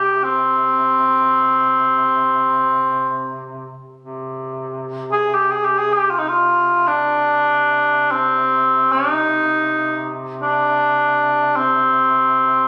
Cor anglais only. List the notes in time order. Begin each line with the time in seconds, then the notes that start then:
Already playing: G4
0.24 C4
5.12 G#4
5.34 G4
5.51 G#4
5.65 G4
5.78 G#4
5.93 G4
6.10 F4
6.18 D#4
6.28 F4
6.87 D4
8.11 C4
8.92 D#4
10.42 D4
11.56 C4